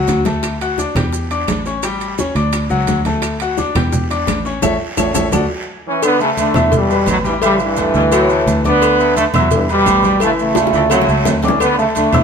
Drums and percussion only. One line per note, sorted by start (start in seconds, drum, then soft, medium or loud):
0.08 high bongo medium
0.08 high conga medium
0.08 high timbale medium
0.08 short guiro medium
0.08 maracas medium
0.25 low bongo medium
0.25 high conga medium
0.25 high timbale medium
0.25 short guiro medium
0.25 maracas soft
0.43 high bongo medium
0.43 high conga soft
0.43 high timbale medium
0.43 long guiro medium
0.43 claves medium
0.43 maracas medium
0.60 high conga soft
0.60 high timbale medium
0.60 maracas soft
0.78 high bongo medium
0.78 high conga medium
0.78 short guiro medium
0.78 maracas medium
0.95 high bongo soft
0.95 high conga medium
0.95 low conga medium
0.95 high timbale medium
0.95 short guiro medium
0.95 claves medium
0.95 maracas soft
1.13 high bongo medium
1.13 high conga soft
1.13 long guiro medium
1.13 maracas medium
1.31 high bongo soft
1.31 high conga soft
1.31 high timbale medium
1.31 maracas soft
1.47 high bongo soft
1.47 low bongo medium
1.47 high conga medium
1.47 high timbale loud
1.47 short guiro medium
1.47 claves medium
1.47 maracas medium
1.66 high bongo soft
1.66 short guiro medium
1.66 maracas soft
1.83 high bongo medium
1.83 high conga soft
1.83 high timbale medium
1.83 long guiro medium
1.83 claves medium
1.83 maracas medium
2.01 high conga soft
2.01 high timbale medium
2.01 maracas soft
2.18 high bongo medium
2.18 high conga medium
2.18 short guiro medium
2.18 maracas medium
2.35 high bongo soft
2.35 high conga soft
2.35 high timbale medium
2.35 short guiro medium
2.35 maracas soft
2.53 high bongo medium
2.53 high conga soft
2.53 high timbale loud
2.53 long guiro medium
2.53 claves medium
2.53 maracas medium
2.70 high bongo soft
2.70 high conga soft
2.70 maracas soft
2.87 high bongo soft
2.87 low bongo medium
2.87 high conga medium
2.87 high timbale medium
2.87 short guiro medium
2.87 maracas medium
3.05 high bongo soft
3.05 high conga medium
3.05 high timbale medium
3.05 short guiro medium
3.05 maracas soft
3.22 high bongo medium
3.22 high conga soft
3.22 high timbale medium
3.22 long guiro medium
3.22 claves medium
3.22 maracas medium
3.40 high conga soft
3.40 high timbale medium
3.40 maracas soft
3.58 high bongo medium
3.58 high conga medium
3.58 short guiro medium
3.58 maracas medium
3.75 high bongo soft
3.75 high conga medium
3.75 low conga medium
3.75 high timbale loud
3.75 short guiro medium
3.75 claves medium
3.75 maracas soft
3.93 high bongo medium
3.93 high conga soft
3.93 low conga medium
3.93 long guiro medium
3.93 maracas medium
4.09 high bongo soft
4.09 high conga soft
4.09 high timbale medium
4.09 maracas soft
4.27 high bongo soft
4.27 low bongo loud
4.27 high conga medium
4.27 high timbale loud
4.27 short guiro medium
4.27 claves medium
4.27 maracas medium
4.45 high bongo soft
4.45 short guiro medium
4.45 maracas soft
4.62 low bongo loud
4.62 high conga medium
4.62 high timbale loud
4.62 long guiro medium
4.62 claves loud
4.62 maracas medium
4.97 low bongo loud
4.97 high conga medium
4.97 high timbale loud
4.97 long guiro loud
4.97 claves loud
4.97 maracas medium
5.15 low bongo loud
5.15 high conga loud
5.15 high timbale loud
5.15 long guiro medium
5.15 claves medium
5.15 maracas loud
5.32 low bongo loud
5.32 high conga loud
5.32 high timbale medium
5.32 long guiro loud
5.32 claves loud
5.32 maracas loud
6.02 cowbell loud
6.02 high conga soft
6.02 low agogo loud
6.02 long guiro medium
6.02 claves medium
6.02 maracas medium
6.20 high conga soft
6.20 maracas soft
6.37 cowbell medium
6.37 high conga medium
6.37 low agogo medium
6.37 short guiro medium
6.37 maracas medium
6.54 high conga loud
6.54 low conga medium
6.54 low agogo loud
6.54 short guiro medium
6.54 claves medium
6.54 maracas soft
6.72 cowbell loud
6.72 high conga soft
6.72 low conga medium
6.72 long guiro medium
6.72 maracas medium
6.89 high conga soft
6.89 low agogo medium
6.89 maracas soft
7.06 cowbell medium
7.06 high conga medium
7.06 low agogo loud
7.06 short guiro medium
7.06 claves medium
7.06 maracas medium
7.24 high conga medium
7.24 short guiro medium
7.24 maracas soft
7.42 cowbell loud
7.42 high conga soft
7.42 low agogo loud
7.42 claves medium
7.42 maracas medium
7.59 high conga soft
7.59 maracas soft
7.76 cowbell medium
7.76 high conga medium
7.76 low agogo medium
7.76 short guiro medium
7.76 maracas medium
7.94 high conga soft
7.94 short guiro medium
7.94 maracas soft
8.12 cowbell loud
8.12 low agogo loud
8.12 long guiro medium
8.12 claves medium
8.12 maracas medium
8.29 high conga soft
8.29 maracas soft
8.46 cowbell medium
8.46 high conga medium
8.46 low agogo medium
8.46 short guiro medium
8.46 maracas medium
8.64 cowbell medium
8.64 high conga medium
8.64 short guiro medium
8.64 maracas soft
8.81 cowbell loud
8.81 high conga soft
8.81 low agogo loud
8.81 long guiro medium
8.81 claves medium
8.81 maracas medium
8.99 high conga soft
8.99 maracas soft
9.17 cowbell medium
9.17 high conga medium
9.17 low agogo medium
9.17 short guiro medium
9.17 maracas medium
9.34 high conga medium
9.34 low conga medium
9.34 low agogo loud
9.34 short guiro medium
9.34 claves medium
9.34 maracas soft
9.51 cowbell loud
9.51 high conga soft
9.51 low conga medium
9.51 long guiro medium
9.51 maracas medium
9.68 high conga soft
9.68 low agogo medium
9.68 maracas soft
9.86 cowbell medium
9.86 high conga medium
9.86 low agogo loud
9.86 short guiro medium
9.86 claves medium
9.86 maracas medium
10.03 high conga medium
10.03 short guiro medium
10.03 maracas soft
10.20 cowbell loud
10.20 high conga soft
10.20 low agogo loud
10.20 long guiro medium
10.20 claves medium
10.20 maracas medium
10.38 high conga soft
10.38 maracas soft
10.55 cowbell medium
10.55 high bongo loud
10.55 high conga medium
10.55 high timbale medium
10.55 low agogo medium
10.55 short guiro medium
10.55 maracas medium
10.67 high bongo loud
10.73 high conga soft
10.73 high timbale medium
10.73 short guiro medium
10.73 maracas soft
10.90 cowbell loud
10.90 high conga soft
10.90 low timbale medium
10.90 low agogo loud
10.90 long guiro medium
10.90 claves medium
10.90 maracas medium
11.01 low bongo medium
11.09 high conga soft
11.09 maracas soft
11.25 cowbell medium
11.25 low bongo loud
11.25 high conga medium
11.25 low timbale medium
11.25 low agogo medium
11.25 short guiro medium
11.25 maracas medium
11.42 cowbell medium
11.42 high conga medium
11.42 low timbale medium
11.42 short guiro medium
11.42 maracas soft
11.48 low bongo loud
11.60 cowbell loud
11.60 high conga soft
11.60 low agogo loud
11.60 long guiro medium
11.60 claves medium
11.60 maracas medium
11.79 high conga soft
11.79 maracas soft
11.95 cowbell medium
11.95 high conga medium
11.95 low agogo medium
11.95 short guiro medium
11.95 maracas medium
12.12 high conga medium
12.12 low conga medium
12.12 low agogo loud
12.12 short guiro medium
12.12 claves medium
12.12 maracas soft